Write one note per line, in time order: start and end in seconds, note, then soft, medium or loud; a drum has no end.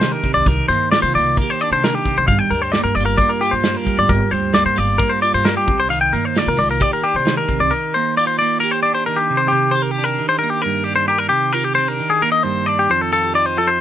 0.00 0.10 C3 medium
0.00 0.47 D#3 medium
0.00 0.28 A#3 medium
0.00 0.28 D4 medium
0.00 0.94 G4 medium
0.00 0.12 C5 medium
0.00 snare medium
0.00 closed hi-hat medium
0.12 0.34 A#4 medium
0.24 0.47 C3 medium
0.24 kick medium
0.24 closed hi-hat medium
0.34 0.46 C2 medium
0.34 0.47 D5 medium
0.46 0.57 C2 medium
0.46 1.84 D#3 medium
0.46 0.68 A#4 medium
0.46 kick loud
0.46 closed hi-hat medium
0.68 1.00 G2 medium
0.68 1.17 A#3 medium
0.68 0.91 C5 medium
0.68 closed hi-hat medium
0.92 1.39 F4 medium
0.92 1.02 D5 medium
0.92 snare loud
0.92 closed hi-hat medium
1.02 1.14 C3 medium
1.02 1.14 C5 medium
1.15 1.36 C2 medium
1.15 2.11 A#3 soft
1.15 1.37 D5 medium
1.15 closed hi-hat medium
1.36 1.50 A#4 medium
1.36 kick medium
1.36 closed hi-hat medium
1.42 3.00 G4 medium
1.50 1.61 C5 medium
1.60 2.11 D4 medium
1.60 1.72 D5 medium
1.60 closed hi-hat medium
1.71 1.92 C3 medium
1.71 1.84 C5 medium
1.83 2.52 D#3 medium
1.83 1.95 A#4 medium
1.83 snare loud
1.83 closed hi-hat medium
1.95 2.17 G4 medium
2.05 2.27 C3 medium
2.05 kick medium
2.05 closed hi-hat soft
2.18 2.27 C2 medium
2.18 2.27 C5 medium
2.28 2.38 G1 medium
2.28 4.07 G2 medium
2.28 2.39 F5 medium
2.28 kick medium
2.28 closed hi-hat medium
2.39 2.51 G5 medium
2.51 2.82 D2 medium
2.51 3.85 G3 medium
2.51 2.62 A#4 medium
2.51 closed hi-hat soft
2.62 2.72 C5 medium
2.72 2.83 D5 medium
2.72 snare medium
2.72 closed hi-hat medium
2.78 3.21 A#3 medium
2.84 2.94 G2 medium
2.84 2.95 A#4 medium
2.95 3.16 G1 medium
2.95 3.05 D5 medium
2.95 closed hi-hat medium
3.00 3.42 F4 medium
3.06 3.18 A#4 medium
3.17 3.30 D5 medium
3.17 kick medium
3.17 closed hi-hat medium
3.21 4.53 A#3 medium
3.29 3.41 A#4 medium
3.41 4.75 F4 medium
3.41 3.53 G4 medium
3.41 closed hi-hat medium
3.51 3.73 G2 medium
3.51 3.77 C5 medium
3.63 3.75 C4 medium
3.63 snare medium
3.63 closed hi-hat medium
3.75 4.09 D4 soft
3.75 3.99 A#4 medium
3.85 4.30 G3 medium
3.85 kick medium
3.85 closed hi-hat medium
3.99 4.09 G1 medium
3.99 4.10 D5 medium
4.08 4.20 G1 loud
4.08 5.64 G2 medium
4.08 4.31 A#4 medium
4.08 kick loud
4.08 closed hi-hat medium
4.31 4.63 D2 medium
4.31 5.89 G3 medium
4.31 4.54 C5 medium
4.31 closed hi-hat medium
4.53 4.98 A#3 medium
4.53 4.65 D5 medium
4.53 snare loud
4.53 closed hi-hat medium
4.66 4.76 G2 medium
4.66 4.78 C5 medium
4.76 4.98 G1 medium
4.76 5.21 F4 medium
4.76 5.00 D5 medium
4.76 closed hi-hat medium
4.98 5.69 A#3 medium
4.98 5.11 A#4 medium
4.98 kick medium
4.98 closed hi-hat medium
5.09 5.22 C5 medium
5.22 5.68 F4 medium
5.22 5.34 D5 medium
5.22 closed hi-hat medium
5.34 5.55 G2 medium
5.34 5.46 C5 medium
5.44 5.69 D4 medium
5.44 5.57 A#4 medium
5.44 snare loud
5.44 closed hi-hat medium
5.57 5.79 G4 medium
5.66 6.09 C2 medium
5.66 5.90 C3 medium
5.66 kick medium
5.66 closed hi-hat soft
5.80 5.90 C5 medium
5.89 7.24 D#3 medium
5.89 6.01 F5 medium
5.89 closed hi-hat medium
6.01 6.13 G5 medium
6.13 6.44 G2 medium
6.13 6.57 A#3 medium
6.13 6.25 A#4 medium
6.13 closed hi-hat soft
6.25 6.38 C5 medium
6.36 6.80 F4 medium
6.36 6.48 D5 medium
6.36 snare medium
6.36 closed hi-hat medium
6.47 6.57 C3 medium
6.47 6.59 A#4 medium
6.57 6.78 C2 medium
6.57 6.70 G#3 medium
6.57 6.70 D5 medium
6.57 closed hi-hat medium
6.70 7.49 A#3 soft
6.70 6.82 A#4 medium
6.80 8.18 G4 medium
6.80 6.93 D5 medium
6.80 kick medium
6.80 closed hi-hat medium
6.93 7.04 A#4 medium
7.03 7.51 D4 medium
7.03 7.15 G4 medium
7.03 closed hi-hat medium
7.14 7.35 C3 medium
7.14 7.37 C5 medium
7.25 7.69 D#3 medium
7.25 snare medium
7.25 closed hi-hat medium
7.37 7.60 A#4 medium
7.48 7.71 C3 medium
7.48 kick medium
7.48 closed hi-hat medium
7.59 7.70 C2 medium
7.59 7.72 D5 medium
7.70 9.06 D#3 medium
7.70 7.94 A#4 medium
7.94 8.40 A#3 medium
7.94 8.17 C5 medium
8.17 8.63 F4 medium
8.17 8.27 D5 medium
8.27 8.38 C5 medium
8.39 9.28 A#3 medium
8.39 8.60 D5 medium
8.60 9.28 G4 medium
8.60 8.71 A#4 medium
8.71 8.82 C5 medium
8.83 9.27 D4 medium
8.83 8.94 D5 medium
8.95 9.06 C5 medium
9.06 10.18 D#3 medium
9.06 9.18 A#4 medium
9.16 9.40 G4 medium
9.30 9.50 C3 medium
9.37 9.50 C5 medium
9.48 9.73 G4 medium
9.52 10.20 C3 medium
9.71 11.09 G4 medium
9.71 9.82 C5 medium
9.82 9.91 A#4 medium
9.91 10.04 G4 medium
9.98 10.84 D4 medium
10.04 10.28 A#4 medium
10.19 11.99 D#3 medium
10.29 10.38 C5 medium
10.39 10.50 A#4 medium
10.44 11.30 A#3 medium
10.50 10.62 G4 medium
10.62 11.30 G2 medium
10.62 10.84 A#4 medium
10.84 11.29 D4 medium
10.84 10.95 G4 medium
10.96 11.08 C5 medium
11.08 11.18 G4 medium
11.08 11.29 A#4 medium
11.18 11.29 A#4 medium
11.29 11.98 C3 medium
11.29 11.53 G4 medium
11.53 11.64 F4 medium
11.53 11.64 A#4 medium
11.64 12.88 G4 soft
11.64 11.74 G4 medium
11.75 11.88 C4 medium
11.75 11.88 C5 medium
11.88 12.67 D4 soft
11.88 12.11 A#4 medium
12.00 13.57 D#3 medium
12.10 12.21 G#4 medium
12.22 12.87 A#3 medium
12.22 12.31 A#4 medium
12.32 12.43 D#5 medium
12.43 12.87 G2 medium
12.43 12.66 C5 medium
12.66 12.87 D4 medium
12.66 12.78 D5 medium
12.79 12.90 G4 medium
12.89 13.81 F2 medium
12.89 13.01 C5 medium
13.01 13.11 A4 medium
13.12 13.24 F4 medium
13.12 13.35 A4 medium
13.24 13.81 G4 medium
13.34 13.81 D#4 medium
13.34 13.46 D5 medium
13.46 13.57 C5 medium
13.58 13.81 F3 medium
13.58 13.69 A4 medium
13.67 13.81 C5 medium